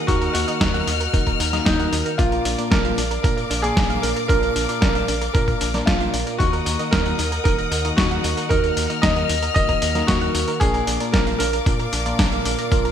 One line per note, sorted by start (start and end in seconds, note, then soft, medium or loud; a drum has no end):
0.00 10.57 A#4 medium
0.00 2.15 D#5 medium
0.00 2.15 F#5 medium
0.07 0.29 D#2 loud
0.07 0.45 D#3 loud
0.07 0.45 A#3 medium
0.07 0.21 D#4 medium
0.07 0.45 D#4 medium
0.07 0.32 F#4 loud
0.07 0.45 F#4 medium
0.07 0.45 A#4 loud
0.07 2.17 F6 medium
0.07 kick loud
0.07 closed hi-hat medium
0.07 tambourine soft
0.21 0.31 A#4 medium
0.21 closed hi-hat soft
0.21 tambourine soft
0.33 0.45 D#2 medium
0.33 0.44 D#4 medium
0.33 1.35 F#4 loud
0.33 open hi-hat loud
0.33 tambourine medium
0.48 0.71 D#3 medium
0.48 0.71 A#3 medium
0.48 0.71 D#4 medium
0.48 0.71 F#4 medium
0.48 0.71 A#4 medium
0.48 0.57 D#5 medium
0.48 closed hi-hat medium
0.48 tambourine soft
0.61 0.81 D#2 medium
0.61 0.70 D#4 loud
0.61 kick loud
0.61 snare loud
0.61 closed hi-hat medium
0.61 tambourine soft
0.74 0.90 D#3 medium
0.74 0.90 A#3 medium
0.74 0.90 D#4 medium
0.74 0.90 F#4 medium
0.74 0.90 A#4 medium
0.74 0.83 F#5 medium
0.74 closed hi-hat soft
0.74 tambourine soft
0.87 1.08 D#2 medium
0.87 0.93 D#4 medium
0.87 open hi-hat loud
0.87 tambourine medium
1.00 1.10 A#4 medium
1.00 closed hi-hat medium
1.00 tambourine soft
1.14 1.34 D#1 medium
1.14 1.50 D#3 medium
1.14 1.50 A#3 medium
1.14 1.26 D#4 medium
1.14 1.50 D#4 medium
1.14 1.50 F#4 medium
1.14 1.50 A#4 medium
1.14 kick loud
1.14 closed hi-hat medium
1.14 tambourine soft
1.27 1.36 A#4 medium
1.27 kick medium
1.27 closed hi-hat soft
1.27 tambourine soft
1.40 1.60 D#2 medium
1.40 1.49 D#4 medium
1.40 open hi-hat loud
1.40 tambourine medium
1.53 1.76 D#3 loud
1.53 1.76 A#3 medium
1.53 1.76 D#4 medium
1.53 1.76 F#4 medium
1.53 1.76 A#4 loud
1.53 1.62 D#5 medium
1.53 snare soft
1.53 closed hi-hat medium
1.53 tambourine soft
1.65 1.86 D#2 medium
1.65 2.20 D#4 medium
1.65 1.76 D#4 loud
1.65 kick loud
1.65 snare loud
1.65 closed hi-hat medium
1.65 tambourine soft
1.79 2.16 D#3 medium
1.79 2.16 A#3 medium
1.79 2.16 D#4 medium
1.79 2.16 F#4 medium
1.79 2.16 A#4 medium
1.79 1.89 F#5 medium
1.79 closed hi-hat soft
1.79 tambourine soft
1.92 2.03 D#2 medium
1.92 1.98 D#4 medium
1.92 open hi-hat loud
1.92 tambourine medium
2.06 2.15 A#4 medium
2.06 closed hi-hat medium
2.06 tambourine soft
2.18 2.39 A#1 loud
2.18 2.55 A#2 loud
2.18 2.55 A#3 medium
2.18 2.55 D4 medium
2.18 2.32 D4 medium
2.18 2.67 F4 loud
2.18 2.55 F4 medium
2.18 2.55 A#4 loud
2.18 6.36 D5 medium
2.18 6.36 F5 medium
2.18 6.36 D6 medium
2.18 kick loud
2.18 closed hi-hat medium
2.18 tambourine soft
2.32 2.41 A#4 medium
2.32 closed hi-hat soft
2.32 tambourine soft
2.45 2.55 A#1 medium
2.45 2.55 D4 medium
2.45 open hi-hat loud
2.45 tambourine medium
2.58 2.82 A#2 medium
2.58 2.82 A#3 medium
2.58 2.82 D4 medium
2.58 2.82 F4 medium
2.58 2.82 A#4 medium
2.58 2.68 D5 medium
2.58 closed hi-hat medium
2.58 tambourine soft
2.71 2.92 A#1 medium
2.71 2.81 D4 loud
2.71 3.20 A#4 medium
2.71 kick loud
2.71 snare loud
2.71 closed hi-hat medium
2.71 tambourine soft
2.85 3.00 A#2 medium
2.85 3.00 A#3 medium
2.85 3.00 D4 medium
2.85 3.00 F4 medium
2.85 3.00 A#4 medium
2.85 2.94 F5 medium
2.85 closed hi-hat soft
2.85 tambourine soft
2.98 3.18 A#1 medium
2.98 3.03 D4 medium
2.98 open hi-hat loud
2.98 tambourine medium
3.11 3.20 A#4 medium
3.11 closed hi-hat medium
3.11 tambourine soft
3.23 3.44 A#2 medium
3.23 3.61 A#2 medium
3.23 3.61 A#3 medium
3.23 3.37 D4 medium
3.23 3.61 D4 medium
3.23 3.61 F4 medium
3.23 3.64 A#4 loud
3.23 3.61 A#4 medium
3.23 kick loud
3.23 closed hi-hat medium
3.23 tambourine soft
3.37 3.46 A#4 medium
3.37 closed hi-hat soft
3.37 tambourine soft
3.50 3.71 A#1 medium
3.50 3.60 D4 medium
3.50 open hi-hat loud
3.50 tambourine medium
3.62 3.87 A#2 medium
3.62 3.87 A#3 medium
3.62 3.87 D4 medium
3.62 3.87 F4 medium
3.62 4.00 G#4 loud
3.62 3.87 A#4 loud
3.62 3.73 D5 medium
3.62 closed hi-hat medium
3.62 tambourine soft
3.77 3.97 A#1 medium
3.77 3.86 D4 loud
3.77 kick loud
3.77 snare loud
3.77 open hi-hat medium
3.77 tambourine soft
3.90 4.26 A#2 medium
3.90 4.26 A#3 medium
3.90 4.26 D4 medium
3.90 4.26 F4 medium
3.90 4.26 A#4 medium
3.90 3.99 F5 medium
3.90 closed hi-hat soft
3.90 tambourine soft
4.02 4.13 A#1 medium
4.02 4.09 D4 medium
4.02 4.08 A#4 medium
4.02 open hi-hat loud
4.02 tambourine medium
4.16 4.26 A#4 medium
4.16 closed hi-hat medium
4.16 tambourine soft
4.28 4.50 A#1 loud
4.28 4.66 A#2 loud
4.28 4.66 A#3 medium
4.28 4.42 D4 medium
4.28 4.66 D4 medium
4.28 4.66 F4 medium
4.28 4.79 A#4 loud
4.28 4.66 A#4 loud
4.28 kick loud
4.28 closed hi-hat medium
4.28 tambourine soft
4.43 4.52 A#4 medium
4.43 closed hi-hat soft
4.43 tambourine soft
4.56 4.66 A#1 medium
4.56 4.65 D4 medium
4.56 open hi-hat loud
4.56 tambourine medium
4.69 4.92 A#2 medium
4.69 4.92 A#3 medium
4.69 4.92 D4 medium
4.69 4.92 F4 medium
4.69 4.92 A#4 medium
4.69 4.78 D5 medium
4.69 closed hi-hat medium
4.69 tambourine soft
4.81 5.02 A#1 medium
4.81 4.91 D4 loud
4.81 5.30 A#4 medium
4.81 kick loud
4.81 snare loud
4.81 closed hi-hat medium
4.81 tambourine soft
4.95 5.11 A#2 medium
4.95 5.11 A#3 medium
4.95 5.11 D4 medium
4.95 5.11 F4 medium
4.95 5.11 A#4 medium
4.95 5.04 F5 medium
4.95 closed hi-hat soft
4.95 tambourine soft
5.08 5.29 A#1 medium
5.08 5.14 D4 medium
5.08 open hi-hat loud
5.08 tambourine medium
5.21 5.31 A#4 medium
5.21 closed hi-hat medium
5.21 tambourine soft
5.33 5.55 A#2 medium
5.33 5.71 A#2 medium
5.33 5.71 A#3 medium
5.33 5.47 D4 medium
5.33 5.71 D4 medium
5.33 5.71 F4 medium
5.33 5.83 A#4 loud
5.33 5.71 A#4 medium
5.33 kick loud
5.33 closed hi-hat medium
5.33 tambourine soft
5.48 5.57 A#4 medium
5.48 kick medium
5.48 closed hi-hat soft
5.48 tambourine soft
5.61 5.81 A#1 medium
5.61 5.70 D4 medium
5.61 open hi-hat loud
5.61 tambourine medium
5.74 5.97 A#2 loud
5.74 5.97 A#3 medium
5.74 5.97 D4 medium
5.74 5.97 F4 medium
5.74 5.97 A#4 loud
5.74 5.84 D5 medium
5.74 snare soft
5.74 closed hi-hat soft
5.74 tambourine soft
5.86 6.08 A#1 medium
5.86 5.97 D4 loud
5.86 6.41 F4 medium
5.86 kick loud
5.86 snare loud
5.86 closed hi-hat medium
5.86 tambourine soft
6.00 6.37 A#2 medium
6.00 6.37 A#3 medium
6.00 6.37 D4 medium
6.00 6.37 F4 medium
6.00 6.37 A#4 medium
6.00 6.10 F5 medium
6.00 closed hi-hat soft
6.00 tambourine soft
6.14 6.24 A#1 medium
6.14 6.19 D4 medium
6.14 open hi-hat loud
6.14 tambourine medium
6.27 6.36 A#4 medium
6.27 closed hi-hat medium
6.27 tambourine soft
6.38 6.60 D#2 loud
6.38 6.76 D#3 loud
6.38 6.76 A#3 medium
6.38 6.52 D#4 medium
6.38 6.76 D#4 medium
6.38 6.88 F#4 loud
6.38 6.76 F#4 medium
6.38 6.76 A#4 loud
6.38 10.57 D#5 medium
6.38 10.57 F#5 medium
6.38 8.48 D#6 medium
6.38 kick loud
6.38 closed hi-hat medium
6.38 tambourine soft
6.53 6.62 A#4 medium
6.53 closed hi-hat soft
6.53 tambourine soft
6.66 6.76 D#2 medium
6.66 6.75 D#4 medium
6.66 open hi-hat loud
6.66 tambourine medium
6.79 7.03 D#3 medium
6.79 7.03 A#3 medium
6.79 7.03 D#4 medium
6.79 7.03 F#4 medium
6.79 7.03 A#4 medium
6.79 6.89 D#5 medium
6.79 closed hi-hat medium
6.79 tambourine soft
6.91 7.13 D#2 medium
6.91 7.02 D#4 loud
6.91 7.41 A#4 loud
6.91 kick loud
6.91 snare loud
6.91 closed hi-hat medium
6.91 tambourine soft
7.06 7.21 D#3 medium
7.06 7.21 A#3 medium
7.06 7.21 D#4 medium
7.06 7.21 F#4 medium
7.06 7.21 A#4 medium
7.06 7.15 F#5 medium
7.06 closed hi-hat soft
7.06 tambourine soft
7.19 7.39 D#2 medium
7.19 7.24 D#4 medium
7.19 open hi-hat loud
7.19 tambourine medium
7.32 7.41 A#4 medium
7.32 closed hi-hat medium
7.32 tambourine soft
7.44 7.65 D#1 medium
7.44 7.82 D#3 medium
7.44 7.82 A#3 medium
7.44 7.58 D#4 medium
7.44 7.82 D#4 medium
7.44 7.82 F#4 medium
7.44 7.93 A#4 loud
7.44 7.82 A#4 medium
7.44 kick loud
7.44 closed hi-hat medium
7.44 tambourine soft
7.58 7.68 A#4 medium
7.58 closed hi-hat soft
7.58 tambourine soft
7.71 7.92 D#2 medium
7.71 7.81 D#4 medium
7.71 open hi-hat loud
7.71 tambourine medium
7.85 8.08 D#3 loud
7.85 8.08 A#3 medium
7.85 8.08 D#4 medium
7.85 8.08 F#4 medium
7.85 8.08 A#4 loud
7.85 7.94 D#5 medium
7.85 closed hi-hat medium
7.85 tambourine soft
7.96 8.18 D#2 medium
7.96 8.07 D#4 loud
7.96 8.51 F#4 medium
7.96 kick loud
7.96 snare loud
7.96 open hi-hat medium
7.96 tambourine soft
8.11 8.47 D#3 medium
8.11 8.47 A#3 medium
8.11 8.47 D#4 medium
8.11 8.47 F#4 medium
8.11 8.47 A#4 medium
8.11 8.20 F#5 medium
8.11 closed hi-hat soft
8.11 tambourine soft
8.24 8.34 D#2 medium
8.24 8.30 D#4 medium
8.24 open hi-hat loud
8.24 tambourine medium
8.37 8.47 A#4 medium
8.37 closed hi-hat medium
8.37 tambourine soft
8.49 8.71 D#2 loud
8.49 8.87 D#3 loud
8.49 8.87 A#3 medium
8.49 8.63 D#4 medium
8.49 8.87 D#4 medium
8.49 8.87 F#4 medium
8.49 9.04 A#4 loud
8.49 8.87 A#4 loud
8.49 10.59 F6 medium
8.49 kick loud
8.49 closed hi-hat soft
8.49 tambourine soft
8.63 8.73 A#4 medium
8.63 closed hi-hat soft
8.63 tambourine soft
8.77 8.87 D#2 medium
8.77 8.86 D#4 medium
8.77 open hi-hat loud
8.77 tambourine medium
8.90 9.13 D#3 medium
8.90 9.13 A#3 medium
8.90 9.13 D#4 medium
8.90 9.13 F#4 medium
8.90 9.13 A#4 medium
8.90 8.99 D#5 medium
8.90 closed hi-hat medium
8.90 tambourine soft
9.02 9.23 D#2 medium
9.02 9.12 D#4 loud
9.02 9.53 D#5 loud
9.02 kick loud
9.02 snare loud
9.02 closed hi-hat medium
9.02 tambourine soft
9.16 9.32 D#3 medium
9.16 9.32 A#3 medium
9.16 9.32 D#4 medium
9.16 9.32 F#4 medium
9.16 9.32 A#4 medium
9.16 9.25 F#5 medium
9.16 closed hi-hat soft
9.16 tambourine soft
9.29 9.50 D#2 medium
9.29 9.35 D#4 medium
9.29 open hi-hat loud
9.29 tambourine medium
9.42 9.52 A#4 medium
9.42 closed hi-hat medium
9.42 tambourine soft
9.54 9.76 D#1 medium
9.54 9.92 D#3 medium
9.54 9.92 A#3 medium
9.54 9.68 D#4 medium
9.54 9.92 D#4 medium
9.54 9.92 F#4 medium
9.54 9.92 A#4 medium
9.54 10.09 D#5 loud
9.54 kick loud
9.54 closed hi-hat medium
9.54 tambourine soft
9.69 9.78 A#4 medium
9.69 kick medium
9.69 closed hi-hat soft
9.69 tambourine soft
9.82 10.02 D#2 medium
9.82 9.91 D#4 medium
9.82 open hi-hat loud
9.82 tambourine medium
9.95 10.18 D#3 medium
9.95 10.18 A#3 medium
9.95 10.18 D#4 medium
9.95 10.18 F#4 medium
9.95 10.18 A#4 loud
9.95 10.04 D#5 medium
9.95 snare soft
9.95 closed hi-hat soft
9.95 tambourine soft
10.07 10.29 D#2 medium
10.07 10.18 D#4 loud
10.07 10.57 F#4 loud
10.07 kick loud
10.07 snare loud
10.07 closed hi-hat medium
10.07 tambourine soft
10.21 10.58 D#3 medium
10.21 10.58 A#3 medium
10.21 10.58 D#4 medium
10.21 10.58 F#4 medium
10.21 10.58 A#4 medium
10.21 10.31 F#5 medium
10.21 closed hi-hat soft
10.21 tambourine soft
10.35 10.45 D#2 medium
10.35 10.40 D#4 medium
10.35 open hi-hat loud
10.35 tambourine medium
10.48 10.57 A#4 medium
10.48 closed hi-hat medium
10.48 tambourine soft
10.60 10.81 A#1 loud
10.60 10.97 A#2 loud
10.60 10.97 A#3 medium
10.60 10.74 D4 medium
10.60 10.97 D4 medium
10.60 10.97 F4 medium
10.60 11.15 G#4 loud
10.60 10.97 A#4 loud
10.60 12.92 A#4 medium
10.60 12.92 D5 medium
10.60 12.92 F5 medium
10.60 12.92 D6 medium
10.60 kick loud
10.60 closed hi-hat medium
10.60 tambourine soft
10.74 10.84 A#4 medium
10.74 closed hi-hat soft
10.74 tambourine soft
10.87 10.97 A#1 medium
10.87 10.97 D4 medium
10.87 open hi-hat loud
10.87 tambourine medium
11.00 11.24 A#2 medium
11.00 11.24 A#3 medium
11.00 11.24 D4 medium
11.00 11.24 F4 medium
11.00 11.24 A#4 medium
11.00 11.10 D5 medium
11.00 closed hi-hat medium
11.00 tambourine soft
11.12 11.34 A#1 medium
11.12 11.23 D4 loud
11.12 11.37 A#4 loud
11.12 kick loud
11.12 snare loud
11.12 closed hi-hat medium
11.12 tambourine soft
11.27 11.42 A#2 medium
11.27 11.42 A#3 medium
11.27 11.42 D4 medium
11.27 11.42 F4 medium
11.27 11.42 A#4 medium
11.27 11.36 F5 medium
11.27 closed hi-hat soft
11.27 tambourine soft
11.39 11.60 A#1 medium
11.39 11.46 D4 medium
11.39 12.92 A#4 loud
11.39 open hi-hat loud
11.39 tambourine medium
11.53 11.62 A#4 medium
11.53 closed hi-hat medium
11.53 tambourine soft
11.66 12.03 A#2 medium
11.66 11.87 A#2 medium
11.66 12.03 A#3 medium
11.66 12.03 D4 medium
11.66 11.79 D4 medium
11.66 12.03 F4 medium
11.66 12.03 A#4 medium
11.66 kick loud
11.66 closed hi-hat medium
11.66 tambourine soft
11.80 11.89 A#4 medium
11.80 closed hi-hat soft
11.80 tambourine soft
11.93 12.13 A#1 medium
11.93 12.02 D4 medium
11.93 open hi-hat loud
11.93 tambourine medium
12.06 12.29 A#2 medium
12.06 12.29 A#3 medium
12.06 12.29 D4 medium
12.06 12.29 F4 medium
12.06 12.29 A#4 loud
12.06 12.15 D5 medium
12.06 closed hi-hat medium
12.06 tambourine soft
12.19 12.39 A#1 medium
12.19 12.28 D4 loud
12.19 kick loud
12.19 snare loud
12.19 open hi-hat medium
12.19 tambourine soft
12.32 12.68 A#2 medium
12.32 12.68 A#3 medium
12.32 12.68 D4 medium
12.32 12.68 F4 medium
12.32 12.68 A#4 medium
12.32 12.41 F5 medium
12.32 closed hi-hat soft
12.32 tambourine soft
12.45 12.55 A#1 medium
12.45 12.51 D4 medium
12.45 open hi-hat loud
12.45 tambourine medium
12.59 12.68 A#4 medium
12.59 closed hi-hat medium
12.59 tambourine soft
12.72 12.92 A#1 medium
12.72 12.92 A#2 loud
12.72 12.92 A#3 medium
12.72 12.92 D4 medium
12.72 12.84 D4 medium
12.72 12.92 F4 medium
12.72 12.92 A#4 loud
12.72 kick loud
12.72 closed hi-hat medium
12.72 tambourine soft
12.85 12.92 A#4 medium
12.85 closed hi-hat soft
12.85 tambourine soft